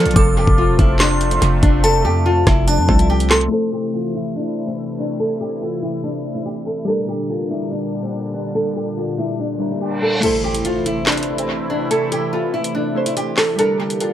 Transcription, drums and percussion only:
0.00 closed hi-hat medium
0.06 closed hi-hat medium
0.11 closed hi-hat soft
0.16 kick loud
0.16 closed hi-hat medium
0.47 kick medium
0.79 kick loud
0.79 closed hi-hat medium
0.99 snare loud
0.99 clap loud
1.21 closed hi-hat medium
1.31 closed hi-hat medium
1.42 closed hi-hat medium
1.63 kick loud
1.63 closed hi-hat medium
1.84 closed hi-hat medium
2.47 kick loud
2.47 cross-stick loud
2.47 snare medium
2.47 closed hi-hat medium
2.68 closed hi-hat medium
2.89 kick loud
2.99 closed hi-hat medium
3.20 closed hi-hat medium
3.30 snare loud
3.30 clap medium
3.30 closed hi-hat medium
3.30 open hi-hat medium
3.41 closed hi-hat medium
10.23 closed hi-hat medium
10.23 crash loud
10.54 closed hi-hat medium
10.65 closed hi-hat medium
10.86 closed hi-hat medium
11.06 snare loud
11.06 clap loud
11.06 closed hi-hat medium
11.12 closed hi-hat medium
11.17 closed hi-hat medium
11.23 closed hi-hat medium
11.38 closed hi-hat medium
11.91 closed hi-hat medium
12.12 closed hi-hat medium
12.64 closed hi-hat medium
13.06 closed hi-hat medium
13.17 closed hi-hat medium
13.37 snare loud
13.37 clap medium
13.37 open hi-hat medium
13.59 closed hi-hat medium
13.90 closed hi-hat medium
14.00 closed hi-hat medium

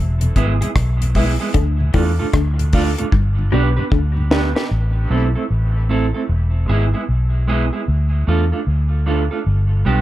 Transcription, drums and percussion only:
0.21 closed hi-hat medium
0.36 kick medium
0.36 closed hi-hat medium
0.62 closed hi-hat medium
0.76 kick loud
0.76 cross-stick loud
0.76 closed hi-hat medium
1.02 closed hi-hat medium
1.15 kick medium
1.15 open hi-hat medium
1.54 kick loud
1.54 closed hi-hat loud
1.94 kick loud
1.94 open hi-hat medium
2.33 kick loud
2.33 cross-stick loud
2.33 closed hi-hat medium
2.59 closed hi-hat soft
2.73 kick loud
2.73 open hi-hat medium
2.98 closed hi-hat medium
3.12 kick loud
3.92 kick loud
4.31 snare loud
4.56 snare medium

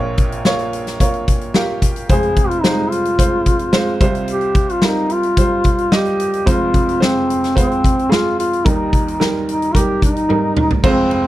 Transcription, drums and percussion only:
0.17 kick medium
0.17 closed hi-hat medium
0.32 closed hi-hat soft
0.45 snare medium
0.59 closed hi-hat soft
0.73 closed hi-hat medium
0.87 snare soft
0.87 closed hi-hat soft
1.00 kick medium
1.00 closed hi-hat medium
1.14 closed hi-hat soft
1.28 kick medium
1.28 closed hi-hat medium
1.41 closed hi-hat soft
1.54 snare loud
1.82 kick medium
1.82 closed hi-hat medium
1.96 closed hi-hat soft
2.09 kick loud
2.09 closed hi-hat medium
2.23 closed hi-hat soft
2.36 kick medium
2.36 closed hi-hat medium
2.51 closed hi-hat soft
2.64 snare medium
2.92 closed hi-hat medium
3.05 closed hi-hat soft
3.19 kick medium
3.19 closed hi-hat medium
3.46 kick medium
3.46 closed hi-hat medium
3.59 closed hi-hat soft
3.73 snare loud
4.01 kick loud
4.01 closed hi-hat medium
4.15 closed hi-hat soft
4.28 closed hi-hat medium
4.41 closed hi-hat soft
4.55 kick medium
4.55 closed hi-hat medium
4.69 closed hi-hat soft
4.82 snare medium
5.10 closed hi-hat medium
5.23 closed hi-hat soft
5.37 kick medium
5.37 closed hi-hat medium
5.64 kick medium
5.64 closed hi-hat medium
5.78 closed hi-hat soft
5.92 snare loud
6.06 closed hi-hat soft
6.20 closed hi-hat medium
6.33 closed hi-hat soft
6.47 kick loud
6.47 closed hi-hat medium
6.74 kick medium
6.74 closed hi-hat medium
6.89 closed hi-hat soft
7.02 snare loud
7.30 closed hi-hat medium
7.44 snare soft
7.44 closed hi-hat soft
7.57 kick medium
7.57 closed hi-hat medium
7.71 closed hi-hat soft
7.84 kick medium
7.84 closed hi-hat medium
7.99 closed hi-hat soft
8.12 snare loud
8.40 closed hi-hat medium
8.53 closed hi-hat soft
8.66 kick loud
8.66 closed hi-hat medium
8.93 kick medium
8.93 closed hi-hat medium
9.08 closed hi-hat soft
9.21 snare medium
9.49 closed hi-hat medium
9.62 closed hi-hat soft
9.75 kick medium
9.75 closed hi-hat medium
10.02 kick medium
10.02 closed hi-hat medium
10.16 closed hi-hat soft
10.30 high tom medium
10.57 mid tom medium
10.71 floor tom medium
10.84 kick loud
10.84 crash medium
11.11 ride medium

